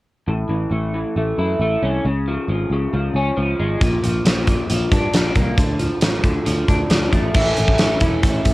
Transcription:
0.28 A1 A2
0.49 A1 E3
0.71 A1 A3
0.94 E3
1.16 A1 A3
1.38 F#2 E4
1.59 A1 A3
1.82 C2 C#4
2.05 C#2 C#3
2.28 F3
2.48 G#1 F3
2.70 C#2 C#3
2.93 C#2 F3
3.14 C#2 C#4
3.37 C#2 F3
3.59 G#1 G#3
3.81 A#1 A#2, kick, closed hi-hat
4.03 A#1 F3, closed hi-hat
4.25 A#1 F3, snare, closed hi-hat
4.47 A#2, kick, closed hi-hat
4.70 A#1 F3, closed hi-hat
4.92 G2 D4, kick, closed hi-hat
5.14 A#1 F3, snare, closed hi-hat
5.35 C2 A#3, kick, closed hi-hat
5.58 D2 D3, kick, closed hi-hat
5.79 F3, closed hi-hat
6.01 A1 F3, snare, closed hi-hat
6.24 D2 D3, kick, closed hi-hat
6.45 D2 F3, closed hi-hat
6.68 D2 D4, kick, closed hi-hat
6.90 D2 F3, snare, closed hi-hat
7.13 A1 A3, kick, closed hi-hat
7.34 A1 A2 E3 A3 C#4 E4, kick, crash
7.57 A1, closed hi-hat
7.68 kick
7.78 A1 E3 A3 C#4 E4, snare, closed hi-hat
8.00 E1 A3 C#4 E4, kick, closed hi-hat
8.23 A1, kick, closed hi-hat
8.45 A1, kick, closed hi-hat

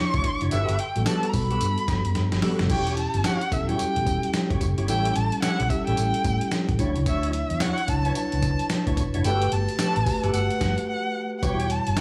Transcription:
Already playing: F#3 D4 E4 C#5
0.00 C#6
0.14 D2 D4 E4 F#4 C#5, kick, closed hi-hat
0.24 kick, closed hi-hat
0.41 F#1 D4 E4 F#4 C#5, closed hi-hat
0.51 G1 F#4 G4 A4 B4 E5, closed hi-hat, tambourine
0.69 G1, closed hi-hat
0.79 G5, closed hi-hat
0.96 A1 G3 B3 F#4 A4, closed hi-hat
1.06 F#4 G4 A4 B4 A5, snare, closed hi-hat, tambourine
1.23 G3 B3 F#4 A4, closed hi-hat
1.29 A#5
1.33 B1 B5, kick, open hi-hat, tambourine
1.50 F#4 G4 A4 B4, closed hi-hat
1.61 G2, closed hi-hat, tambourine
1.78 closed hi-hat
1.88 G2, kick, snare, closed hi-hat, tambourine
2.05 F#2, closed hi-hat
2.15 G2, snare, closed hi-hat
2.32 G1, snare, closed hi-hat
2.42 G3 B3 F#4 G4 A4 B4, snare, open hi-hat
2.59 F#1, snare, closed hi-hat
2.69 E1 C#4 E4 F#4 G4 C#5 G5, kick, closed hi-hat, crash, tambourine
2.77 G4
2.87 closed hi-hat
2.97 A5, closed hi-hat
3.14 G1, closed hi-hat
3.24 E4 F#4 G4 C#5 F#5, snare, closed hi-hat, tambourine
3.41 closed hi-hat
3.51 E1 F#3 C#4 E4 A4 E5, kick, closed hi-hat, tambourine
3.68 G3 C#4 E4 F#4 G4 C#5 G5, closed hi-hat
3.76 G4, muted fingered electric bass stroke, closed hi-hat, tambourine
3.96 E1, closed hi-hat
4.06 kick, closed hi-hat, tambourine
4.23 closed hi-hat
4.33 snare, closed hi-hat, tambourine
4.50 G1 E4 F#4 G4 C#5, kick, closed hi-hat
4.61 F#1, kick, closed hi-hat, tambourine
4.77 G1 E4 F#4 G4 C#5, closed hi-hat
4.88 A1 G3 C#4 E4 G4 A4 C#5 G5, closed hi-hat, tambourine
5.05 closed hi-hat
5.16 A1 A5, closed hi-hat
5.32 closed hi-hat
5.42 E4 G4 A4 C#5 F#5, snare, closed hi-hat, tambourine
5.60 B1, closed hi-hat
5.70 G3 C#4 E4 G4 E5, kick, closed hi-hat, tambourine
5.87 A1 G3 C#4 E4 G4 A4 C#5 G5, closed hi-hat
5.97 A1, closed hi-hat, tambourine
6.14 closed hi-hat
6.24 A2, kick, closed hi-hat, tambourine
6.41 closed hi-hat
6.51 snare, closed hi-hat, tambourine
6.69 A1, kick, closed hi-hat
6.79 D2 F#3 D4 E4 F#4 C#5, kick, closed hi-hat, tambourine
6.96 C#2, closed hi-hat
7.06 D2 D4 E4 F#4 C#5 E5, kick, closed hi-hat, tambourine
7.23 closed hi-hat
7.33 E5, closed hi-hat
7.50 E2, closed hi-hat
7.60 D4 E4 F#4 C#5 F#5, snare, closed hi-hat, tambourine
7.78 closed hi-hat
7.88 C#2 F#3 D4 E4 C#5 A5, kick, closed hi-hat, tambourine
8.04 F#3 D4 E4 F#4 B4 C#5, closed hi-hat
8.12 C#5, closed hi-hat, tambourine
8.16 A5, muted fingered electric bass stroke
8.32 C#2, closed hi-hat
8.42 kick, closed hi-hat, tambourine
8.59 closed hi-hat
8.70 snare, closed hi-hat, tambourine
8.87 D2 D4 E4 F#4 C#5, kick, closed hi-hat
8.97 E1, kick, closed hi-hat, tambourine
9.14 F#1 D4 E4 F#4 C#5, closed hi-hat
9.24 G1 A3 F#4 G4 A4 B4 G5, closed hi-hat, tambourine
9.31 B4
9.42 closed hi-hat
9.52 G1 A5, closed hi-hat
9.69 closed hi-hat
9.79 F#4 G4 A4 B4, snare, closed hi-hat, tambourine
9.96 A1, closed hi-hat
10.06 A3 F#4 G4 B4, kick, open hi-hat, tambourine
10.22 G1 A3 F#4 G4 A4 B4, closed hi-hat
10.34 G1 F#5, closed hi-hat, tambourine
10.50 closed hi-hat
10.61 G2, kick, snare, closed hi-hat, tambourine
10.78 closed hi-hat
10.89 F#5
11.39 G3 E4 F#5, kick, closed hi-hat, tambourine
11.43 E1 F#4 G4 B4 C#5 G5
11.50 C#5
11.60 closed hi-hat
11.70 A5, closed hi-hat
11.87 G1, closed hi-hat
11.97 E4 F#4 G4 C#5, snare, closed hi-hat, tambourine

